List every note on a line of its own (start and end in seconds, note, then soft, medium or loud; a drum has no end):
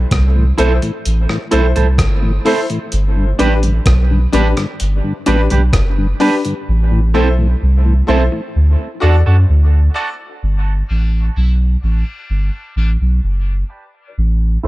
0.11 0.52 C2 medium
0.11 kick loud
0.11 cross-stick loud
0.11 closed hi-hat medium
0.36 0.45 A2 medium
0.36 0.45 E3 medium
0.58 0.80 B1 medium
0.58 0.68 A3 medium
0.58 0.68 C4 medium
0.58 0.72 E4 medium
0.58 0.75 E4 medium
0.58 0.68 E4 medium
0.58 0.76 A4 medium
0.58 0.72 A4 medium
0.58 0.76 C5 loud
0.58 0.72 C5 loud
0.58 closed hi-hat medium
0.82 0.92 A2 medium
0.82 0.92 E3 medium
0.82 muted clean electric guitar stroke soft
0.82 closed hi-hat medium
1.05 1.27 A1 medium
1.05 closed hi-hat medium
1.29 1.38 A2 medium
1.29 1.38 E3 medium
1.29 cross-stick medium
1.51 1.74 B1 medium
1.51 1.62 A3 medium
1.51 1.62 C4 medium
1.51 1.69 E4 medium
1.51 1.65 E4 medium
1.51 1.62 E4 medium
1.51 1.69 A4 medium
1.51 1.66 A4 medium
1.51 1.70 C5 loud
1.51 1.66 C5 medium
1.51 closed hi-hat medium
1.76 2.01 C2 medium
1.76 1.85 A2 medium
1.76 1.85 E3 medium
1.76 1.87 E4 soft
1.76 1.86 A4 medium
1.76 1.86 C5 medium
1.76 closed hi-hat medium
1.98 2.39 G1 medium
1.98 kick loud
1.98 cross-stick loud
1.98 closed hi-hat loud
2.23 2.32 A2 medium
2.23 2.32 E3 medium
2.45 2.55 A3 medium
2.45 2.55 C4 medium
2.45 2.63 E4 medium
2.45 2.59 E4 medium
2.45 2.56 E4 medium
2.45 2.63 A4 medium
2.45 2.60 A4 medium
2.45 2.63 C5 loud
2.45 2.60 C5 medium
2.45 open hi-hat medium
2.70 2.79 A2 medium
2.70 2.79 E3 medium
2.70 2.79 A4 soft
2.70 2.79 C5 soft
2.70 closed hi-hat soft
2.92 3.33 G1 loud
2.92 closed hi-hat loud
3.17 3.26 G2 medium
3.17 3.26 D3 medium
3.39 3.80 A1 medium
3.39 3.49 G3 medium
3.39 3.49 B3 medium
3.39 3.53 D4 loud
3.39 3.56 D4 loud
3.39 3.49 D4 medium
3.39 3.57 G4 medium
3.39 3.53 G4 loud
3.39 3.57 B4 loud
3.39 3.53 B4 loud
3.39 closed hi-hat medium
3.63 3.73 G2 medium
3.63 3.73 D3 medium
3.63 closed hi-hat medium
3.86 4.27 B1 medium
3.86 kick loud
3.86 cross-stick loud
3.86 closed hi-hat medium
4.10 4.19 G2 medium
4.10 4.20 D3 medium
4.32 4.54 A1 loud
4.32 4.43 G3 medium
4.32 4.43 B3 medium
4.32 4.50 D4 medium
4.32 4.47 D4 medium
4.32 4.43 D4 medium
4.32 4.50 G4 medium
4.32 4.47 G4 medium
4.32 4.51 B4 loud
4.32 4.47 B4 medium
4.32 closed hi-hat medium
4.57 4.66 G2 medium
4.57 4.66 D3 medium
4.57 muted clean electric guitar stroke soft
4.57 cross-stick medium
4.57 closed hi-hat medium
4.80 5.01 G1 medium
4.80 closed hi-hat medium
5.04 5.13 G2 medium
5.04 5.13 D3 medium
5.26 5.48 A1 medium
5.26 5.36 G3 medium
5.26 5.36 B3 medium
5.26 5.44 D4 medium
5.26 5.40 D4 medium
5.26 5.37 D4 medium
5.26 5.44 G4 medium
5.26 5.40 G4 medium
5.26 5.44 B4 loud
5.26 5.41 B4 medium
5.26 closed hi-hat medium
5.50 5.71 B1 medium
5.50 5.60 G2 medium
5.50 5.60 D3 medium
5.50 5.62 D4 soft
5.50 5.61 G4 medium
5.50 5.61 B4 medium
5.50 closed hi-hat medium
5.73 6.14 F#1 medium
5.73 kick loud
5.73 cross-stick loud
5.73 closed hi-hat medium
5.98 6.07 G2 medium
5.98 6.07 D3 medium
6.20 6.30 G3 medium
6.20 6.30 B3 medium
6.20 6.37 D4 medium
6.20 6.34 D4 medium
6.20 6.30 D4 medium
6.20 6.38 G4 medium
6.20 6.34 G4 medium
6.20 6.38 B4 loud
6.20 6.35 B4 medium
6.20 open hi-hat medium
6.45 6.54 G2 medium
6.45 6.54 D3 medium
6.45 6.54 G4 soft
6.45 6.54 B4 soft
6.45 closed hi-hat soft
6.69 7.17 A1 loud
6.91 7.00 A2 medium
6.91 7.01 E3 medium
7.14 7.55 B1 medium
7.14 7.24 A3 medium
7.14 7.24 C4 medium
7.14 7.28 C4 medium
7.14 7.31 E4 medium
7.14 7.24 E4 medium
7.14 7.28 E4 medium
7.14 7.32 A4 medium
7.14 7.28 A4 medium
7.14 7.32 C5 loud
7.38 7.47 A2 medium
7.38 7.47 E3 medium
7.63 8.02 C2 medium
7.85 7.94 A2 medium
7.85 7.94 E3 medium
8.07 8.29 B1 medium
8.07 8.17 A3 medium
8.07 8.17 C4 medium
8.07 8.22 C4 medium
8.07 8.25 E4 medium
8.07 8.17 E4 medium
8.07 8.22 E4 medium
8.07 8.25 A4 medium
8.07 8.22 A4 loud
8.07 8.25 C5 loud
8.32 8.41 A2 medium
8.32 8.41 E3 medium
8.32 muted clean electric guitar stroke soft
8.56 8.76 D2 medium
8.79 8.88 D2 medium
8.79 8.88 A2 medium
9.00 9.23 E2 medium
9.00 9.11 A3 medium
9.00 9.11 D4 medium
9.00 9.15 D4 medium
9.00 9.18 F#4 medium
9.00 9.11 F#4 medium
9.00 9.15 F#4 medium
9.00 9.18 A4 medium
9.00 9.16 A4 medium
9.00 9.19 D5 loud
9.26 9.35 D2 medium
9.26 9.45 F#2 medium
9.26 9.35 A2 medium
9.26 9.36 D4 soft
9.26 9.36 F#4 medium
9.26 9.36 A4 medium
9.49 9.89 D2 medium
9.73 9.81 D2 medium
9.73 9.81 A2 medium
9.94 10.04 A3 medium
9.94 10.08 D4 medium
9.94 10.04 D4 medium
9.94 10.12 F#4 medium
9.94 10.05 F#4 medium
9.94 10.09 F#4 medium
9.94 10.12 A4 medium
9.94 10.09 A4 medium
9.94 10.13 D5 loud
10.19 10.28 A4 soft
10.19 10.28 D5 soft
10.43 10.83 G1 loud
10.88 11.30 A1 medium
10.88 11.26 B2 medium
10.88 11.25 G3 medium
10.88 11.25 D4 medium
10.88 11.02 D4 medium
10.88 11.06 G4 medium
10.88 11.02 G4 medium
10.88 11.06 B4 medium
10.88 11.03 B4 medium
10.88 11.06 D5 medium
11.35 11.77 B1 medium
11.35 11.54 E3 medium
11.35 11.54 C4 medium
11.35 11.54 E4 medium
11.81 12.04 A1 medium
11.81 12.71 B2 medium
11.81 12.71 G3 medium
11.81 12.71 D4 medium
11.81 11.96 D4 medium
11.81 11.99 G4 medium
11.81 11.96 G4 medium
11.81 12.00 B4 medium
11.81 11.96 B4 medium
11.81 12.00 D5 medium
12.06 muted clean electric guitar stroke soft
12.30 12.50 G1 medium
12.75 12.97 A1 medium
12.75 12.90 B2 medium
12.75 12.90 G3 medium
12.75 12.90 D4 medium
12.75 12.89 D4 medium
12.75 12.93 G4 medium
12.75 12.90 G4 medium
12.75 12.93 B4 medium
12.75 12.90 B4 medium
12.75 12.93 D5 loud
13.00 13.20 B1 medium
13.00 13.11 D4 soft
13.00 13.10 G4 medium
13.00 13.10 B4 medium
13.24 13.64 F#1 medium
13.69 13.83 D4 medium
13.69 13.87 G4 medium
13.69 13.83 G4 medium
13.69 13.87 B4 medium
13.69 13.84 B4 medium
13.69 13.87 D5 medium
13.94 14.03 B4 soft
13.94 14.03 D5 soft
14.18 14.58 A1 loud
14.63 14.68 B1 medium
14.63 14.68 E4 medium
14.63 14.68 A4 medium